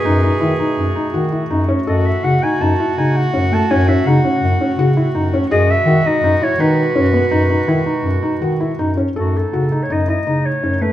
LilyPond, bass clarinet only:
\new Staff \with { instrumentName = "Bass clarinet" } { \clef bass \time 5/4 \key fis \dorian \tempo 4 = 164 fis,4 dis8 r8 fis,8 r8 dis4 fis,4 | fis,4 cis8 r8 fis,8 r8 cis4 fis,4 | fis,4 cis8 r8 fis,8 r8 cis4 fis,4 | fis,4 dis8 r8 fis,8 r8 dis4 fis,4 |
fis,4 dis8 r8 fis,8 r8 dis4 fis,4 | fis,4 cis4 fis,4 cis4 fis,4 | }